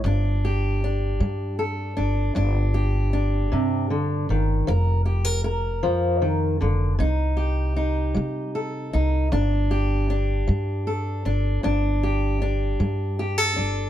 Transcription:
<<
  \new Staff \with { instrumentName = "Steel-string acoustic guitar" } { \time 6/8 \key g \minor \tempo 4. = 52 << { <d' g'>8 g'8 d'4 a'8 d'8 | d'8 g'8 d'2 | bes'8 g'16 bes'16 bes'2 | ees'8 g'8 ees'4 a'8 ees'8 |
d'8 g'8 d'4 a'8 d'8 | d'8 g'8 d'4 g'16 a'16 d'8 | } \\ { g,4 r8 g4 r8 | g,4 r8 c8 d8 ees8 | f4 r8 f8 ees8 d8 | c4 r8 g4 r8 |
g,4 r8 g4 r8 | g,4 r8 g4 r8 | } >> }
  \new Staff \with { instrumentName = "Upright bass" } { \clef bass \time 6/8 \key g \minor g,,4. g,4 g,,8 | g,,4. g,4 g,,8 | f,,4. f,4 f,,8 | c,4. c4 c,8 |
g,,4. g,4 g,,8 | g,,4. g,4 g,,8 | }
>>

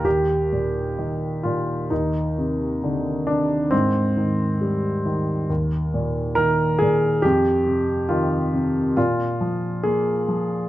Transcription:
<<
  \new Staff \with { instrumentName = "Grand piano" } { \time 4/4 \key ees \major \tempo 4 = 67 g'4. f'8 ees'4 r8 d'8 | c'2 r4 bes'8 aes'8 | g'4 f'4 f'4 aes'4 | }
  \new Staff \with { instrumentName = "Grand piano" } { \clef bass \time 4/4 \key ees \major ees,8 bes,8 ees8 bes,8 ees,8 c8 d8 c8 | aes,8 ees8 g8 ees8 ees,8 bes,8 ees8 bes,8 | f,8 c8 ees8 c8 bes,8 f8 bes8 f8 | }
>>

